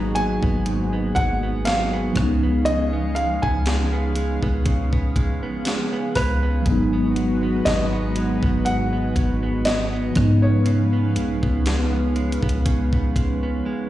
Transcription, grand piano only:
Already playing: A#5
0.15 G#5
1.15 F#5
1.65 F5
2.65 D#5
3.15 F5
3.42 G#5
6.15 B4
7.65 D#5
8.65 F#5
9.65 D#5
10.42 C#5

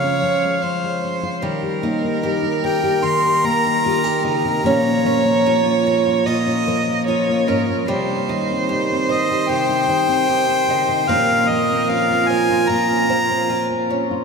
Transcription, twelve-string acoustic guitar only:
1.42 G3
1.83 D#4
2.23 G4
2.64 A#4
3.03 G4
3.44 A#4
3.85 F4
4.04 G4
4.24 D#4
4.66 C#4
5.06 C#4
5.46 F4
5.87 A#4
6.28 F4
6.68 A#4
7.08 F4
7.48 C#4
7.88 G3
8.29 D#4
8.69 G4
9.09 C5
9.49 G4
9.89 C5
10.30 G4
10.70 D#4
11.09 A#3
11.90 F4
12.30 C5
12.69 F4
13.10 C5
13.50 F4
13.90 C#4

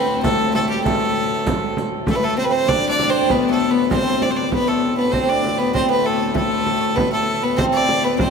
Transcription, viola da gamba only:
Already playing: C4
0.23 A3
0.84 A3
2.06 A3
2.19 A3
2.37 C4
2.51 C4
2.66 D4
3.29 B3
3.68 B3
3.90 C4
4.51 B3
4.99 B3
5.13 C4
5.28 D4
5.59 B3
5.74 C4
5.89 B3
6.06 A3
6.35 A3
6.96 B3
7.11 A3
7.43 B3
7.57 C4
8.03 B3
8.18 C4

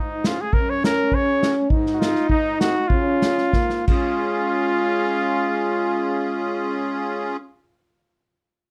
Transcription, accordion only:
Already playing: G#2
0.25 C#4 F4 G#4
0.53 F#2
0.84 C#4 F#4 A#4
1.12 C#3
1.42 C#4 F#4 A#4
1.70 G#2
2.00 C4 D#4 G#4
2.29 G#2
2.61 C4 D#4 G#4
2.90 C#3
3.23 C#4 F4 G#4
3.55 G#2
3.89 C#4 F4 G#4

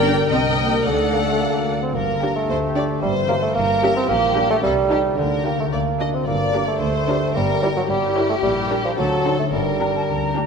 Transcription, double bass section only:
Already playing: G1
0.30 C2
0.85 D2
1.95 G1
2.49 D2
3.03 G1
3.57 G1
4.10 A#1
4.64 C2
5.19 D2
5.73 D2
6.28 G1
6.82 D2
7.36 G1
7.90 G1
8.44 A#1
8.99 D2
9.53 G1
10.09 D2

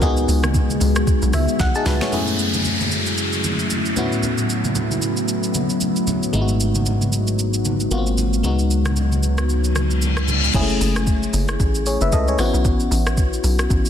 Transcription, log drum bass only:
0.02 C#2
0.28 C#2
0.81 C#2
1.22 B1
1.33 C#2
1.60 B1
1.86 C#2
10.54 F#1
10.81 F#1
11.33 F#1
11.60 A1
12.01 F#1
12.12 C#2
12.38 A1
12.54 B1
12.65 A1
12.91 A1
13.44 B1
13.70 A1

